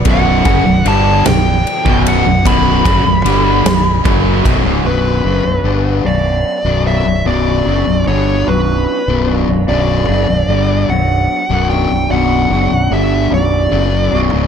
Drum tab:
RD |x-x-x-x-x-x-|x-x-x-x-x-x-|------------|------------|
SD |------o-----|------o-----|------------|------------|
BD |o-o------o--|o-o-----o-o-|------------|------------|

RD |------------|------------|
SD |------------|------------|
BD |------------|------------|